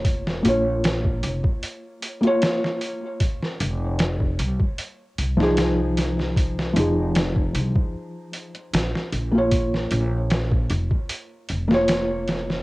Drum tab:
HH |o-o-o-o-o-oxo-o-|o-o-o-o-o-o-o-o-|o-o-o-o---oxo-o-|o-o-o-o-o-o-o-o-|
SD |-o--o-------oo--|-o--o------oo-oo|-o--o-------oo--|-o--o------oo-oo|
BD |o----o-o--------|o----o-o--------|o----o-o--------|o----o-o--------|